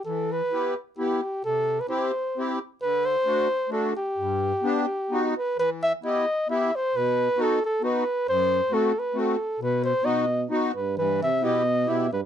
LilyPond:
<<
  \new Staff \with { instrumentName = "Flugelhorn" } { \time 3/4 \key g \major \tempo 4 = 132 a'8 b'4 r8 g'4 | a'8. b'16 c''4. r8 | b'8 c''4. a'8 g'8~ | g'2~ g'8 b'8 |
\key e \minor b'8 e''8 dis''4 e''8 c''8 | b'4 a'8 a'8 b'4 | c''4 a'8 b'8 a'4 | b'8 c''8 dis''4 r8 b'8 |
b'8 e''8 dis''4 e''8 b'8 | }
  \new Staff \with { instrumentName = "Accordion" } { \time 3/4 \key g \major e4 <b e' g'>8 r8 <b e' g'>8 r8 | c4 <c' e' g'>8 r8 <c' e' g'>8 r8 | d4 <a d' fis'>8 r8 <a d' fis'>8 r8 | g,4 <b d' g'>8 r8 <b dis' fis'>8 r8 |
\key e \minor e4 <b e' g'>8 r8 <b e' g'>8 r8 | b,4 <b dis' fis'>8 r8 <b dis' fis'>8 r8 | fis,4 <a c' fis'>8 r8 <a c' fis'>8 r8 | b,4 <b dis' fis'>8 r8 <b dis' fis'>8 r8 |
e4 <b e' g'>8 r8 <b e' g'>8 r8 | }
  \new Staff \with { instrumentName = "Euphonium" } { \clef bass \time 3/4 \key g \major r2. | r2. | r2. | r2. |
\key e \minor r2. | r2. | r2. | r4 b,4 r8 g,8 |
g,8 c8 b,4 b,8 g,8 | }
>>